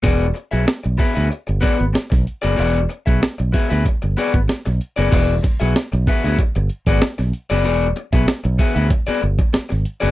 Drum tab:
CC |----------------|----------------|x---------------|----------------|
HH |xxxxxxxxxxxxxxxx|xxxxxxxxxxxxxxxx|xxxxxxxxxxxxxxxx|xxxxxxxxxxxxxxxx|
SD |----o-------oo--|----o-------oo--|----o-------oo--|----o-------oo--|
BD |o-----o---o--o--|---o--o-o--o----|o-o---o-o--o----|---o--o-o--o----|